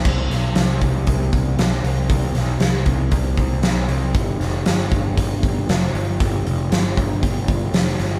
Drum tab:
CC |x-------|--------|--------|--------|
HH |-ooooooo|oooooooo|oooooooo|oooooooo|
SD |-oo---o-|-oo---o-|-oo---o-|--o---oo|
BD |o--ooo--|o--ooo--|o--ooo--|o--ooo--|